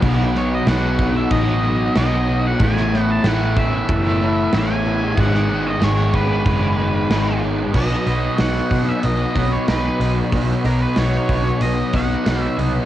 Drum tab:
CC |x---x---x---x---|x---x---x---x---|x---x---x---x---|x---------------|
HH |----------------|----------------|----------------|--o-o-o-o-o-o-o-|
SD |--o-o-------o---|-oo-o-------o---|-o--o-------o---|----o-------o---|
BD |o-----o-o-------|o-----o-o-------|o-----o-o-------|o-----o---o-----|

CC |----------------|
HH |o-o-o-o-o-o-o-o-|
SD |----o-------o---|
BD |o-----o---o-----|